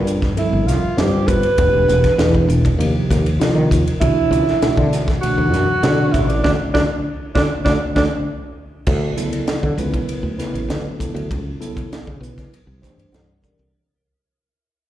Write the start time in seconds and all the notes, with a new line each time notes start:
Already playing: G2 D3 G3 C4 F4 A#4
0.07 hi-hat pedal, ride
0.22 kick, snare
0.36 D3 F3 G3 C4 E4 A4, muted fretless electric bass stroke, ride
0.53 G1
0.67 C2 F4, snare, hi-hat pedal, ride
0.83 muted fretless electric bass stroke
0.97 G2 D3 G3 C4 F4 G4 C5, snare, ride
1.27 G1 B4, kick, hi-hat pedal, ride
1.43 ride
1.58 E1 B2 E3 A3 D4 G4, kick, ride
1.73 E1
1.88 E1, hi-hat pedal, ride
2.04 kick, snare, ride
2.18 E2 B2 E3 A3 D4 E4, snare, ride
2.34 kick
2.48 E1, hi-hat pedal, ride
2.65 kick, ride
2.79 D#2 C3 F3 A#3 D#4 G4, ride
3.10 D#2, kick, snare, hi-hat pedal, ride
3.26 ride
3.39 C3 F3 A#3 D#4 F4, snare, ride
3.55 D#3
3.71 D#2, kick, hi-hat pedal, ride
3.87 ride
4.00 D2 B2 E3 A3 D4 E4 F#4, kick, ride
4.31 C#2, hi-hat pedal, ride
4.48 snare
4.62 B2 E3 A3 D4 F#4, muted fretless electric bass stroke, snare, ride
4.77 D3, kick
4.93 snare, hi-hat pedal, ride
5.08 kick, snare
5.21 B2 E3 A3 D4 F#4, muted fretless electric bass stroke, ride
5.38 D2
5.53 F#2, snare, hi-hat pedal, ride
5.68 muted fretless electric bass stroke
5.83 B2 D3 E3 A3 D4 F#4, snare, ride
6.12 A1 E4, kick, snare, hi-hat pedal, ride
6.27 D4, ride
6.43 D2 A3 C#4 D4, kick, snare
6.74 D2 A3 C#4 D4, kick, snare
7.35 D2 A3 C#4 D4, kick, snare
7.64 D2 A3 C#4 D4, kick, snare
7.95 D2 A3 C#4 D4, kick, snare
8.86 D2, kick, crash
9.17 C#3 F#3 B3 E4 A4, hi-hat pedal, ride
9.33 ride
9.48 snare, ride
9.63 D3, kick
9.78 C#2 C#3 F#3 B3 E4 B4, hi-hat pedal, ride
9.94 kick, ride
10.08 muted fretless electric bass stroke, ride
10.23 D2
10.38 C#3 F#3 B3 E4 B4, snare, hi-hat pedal, ride
10.54 A1, ride
10.68 D2, snare, ride
10.99 C#3 F#3 B3 E4 A4, kick, hi-hat pedal, ride
11.15 D2, ride
11.31 C#2, kick, ride
11.60 C#3 F#3 B3 E4 A4, hi-hat pedal, ride
11.77 kick, ride
11.93 snare, ride
12.07 C#3, kick
12.21 B1 C#3 F#3 B3 E4 B4, hi-hat pedal, ride
12.38 kick, snare, ride
12.51 muted fretless electric bass stroke, ride
12.67 C2
12.82 E3 A3 D4 G4 C5, kick, snare, hi-hat pedal, ride
12.98 G2, ride
13.12 C2 F#5, snare, ride
13.42 E3 D4 G4 A4 A#4 D5, kick, hi-hat pedal, ride
13.59 C2, ride